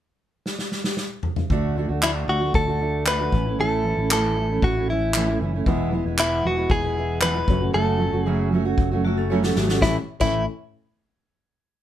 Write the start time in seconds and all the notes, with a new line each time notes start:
0.46 snare
0.59 snare
0.72 snare
0.84 snare
0.97 snare
1.23 mid tom
1.36 mid tom
1.50 D2 D3 A3 D4 F#4, kick
1.76 D3 A3 D4 F#4
1.88 D2 A3 D4 F#4
2.02 D3 A3 D4 E4 F#4, clap
2.28 D2 D3 A3 D4 F#4
2.41 A3 D4 F#4
2.54 D2 A4, kick
2.67 A3 D4 F#4
2.80 D3 A3 D4 F#4
3.06 D3 A3 D4 F#4 B4, clap
3.19 A3 D4 F#4
3.32 A1 E3 A3 C#4 E4, kick
3.46 A3 C#4 E4
3.58 A1 A2 E3 A3 C#4 E4 A4
3.85 E3 A3 C#4 E4
3.97 A1 A3 C#4 E4
4.11 A2 E3 A3 C#4 E4 A4, clap
4.37 E3 A3 C#4 E4
4.50 A3 C#4 E4
4.62 A1 F#4, kick
4.77 A3 C#4 E4
4.90 E3 A3 C#4 E4
5.14 A2 E3 A3 C#4 E4, clap
5.28 A3 C#4 E4
5.40 F#1 E3 A3 C#4 E4
5.54 A3 C#4 E4
5.64 E1 E2 B2 E3 G#3 B3 E4, kick
5.68 E4 B4
5.92 E3 G#3 B3 E4
6.05 E1 E3 G#3 B3 E4
6.18 E2 B2 E3 G#3 B3 E4, clap
6.44 E1 E3 G#3 B3 E4 F#4
6.57 E3 G#3 B3 E4
6.70 E1 G#4, kick
6.84 E3 G#3 B3 E4
6.97 E3 G#3 B3 E4
7.21 E2 B2 E3 G#3 B3 E4 B4, clap
7.35 E3 G#3 B3 E4
7.46 F#1 F#3 A3 C#4 F#4, kick
7.50 F#4 C#5
7.60 F#3 A3 C#4 F#4
7.73 F#1 F#2 C#3 F#3 A3 C#4 F#4 A4
8.00 F#3 A3 C#4 F#4
8.13 F#1 F#3 A3 C#4 F#4
8.25 F#2 C#3 F#3 A3 C#4 F#4 G#4
8.52 F#3 A3 C#4 F#4
8.65 F#3 A3 C#4 F#4
8.78 F#1, kick
8.91 F#3 A3 C#4 F#4
9.04 F#3 A3 C#4 F#4
9.18 C#4 A4
9.30 F#2 C#3 F#3 A3 C#4 F#4 C#5
9.43 F#3 A3 C#4 F#4 A4, snare
9.55 G#1 F#3 A3 C#4 F#4, snare
9.69 F#3 A3 C#4 F#4 A4, snare
9.81 A1 A2 E3 A3 C#4 E4 C#5, kick, snare
10.20 A1 A2 E3 A3 C#4 E4 C#5, kick, crash